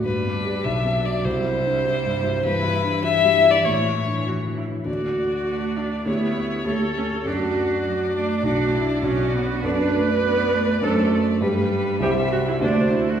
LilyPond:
<<
  \new Staff \with { instrumentName = "Violin" } { \time 2/4 \key c \lydian \tempo 4 = 100 b'4 \tuplet 3/2 { e''4 d''8 } | c''2 | \key d \major b'4 e''8. d''16 | cis''4 r4 |
d''2 | cis''2 | d''2~ | d''2 |
\key d \mixolydian d''2~ | d''4 b'4 | e''4 c''4 | }
  \new Staff \with { instrumentName = "Grand piano" } { \time 2/4 \key c \lydian \tuplet 3/2 { g,8 b8 <g' d''>8 b,,8 b8 <fis' d''>8 } | \tuplet 3/2 { c,8 e'8 d'8 e'8 g,8 e'8 } | \key d \major \tuplet 3/2 { g,8 e'8 d'8 e'8 g8 e'8 } | \tuplet 3/2 { a,8 e'8 d'8 e'8 e8 e'8 } |
<d, a fis' d''>2 | <d, a g' cis''>4 <d, a g' cis''>4 | <fis, a fis' d''>2 | <b,, d' fis' d''>4 <b,, d' fis' d''>4 |
\key d \mixolydian <fis, d' a' d''>2 | <fis, d' a' c''>4 <g, d' g' b'>4 | <c, e' g' c''>4 <d, d' fis' c''>4 | }
  \new Staff \with { instrumentName = "Viola" } { \time 2/4 \key c \lydian d'2 | e'2 | \key d \major e'4 e'4 | e'4 fis'8 e'8 |
fis'4. d'8 | e'4 a'4 | fis'4. d'8 | fis'8 e'8 fis'4 |
\key d \mixolydian b'2 | a'8 r4. | g'8 fis'16 e'16 d'8 e'16 fis'16 | }
  \new Staff \with { instrumentName = "Cello" } { \time 2/4 \key c \lydian g4 fis4 | g2 | \key d \major e4 e4 | e4. r8 |
r4 a4 | b4 a8 cis'8 | d'4 fis8 a8 | d'4 cis'8 b8 |
\key d \mixolydian d'8 a8 b8 a8 | a4 g4~ | g4 a4 | }
>>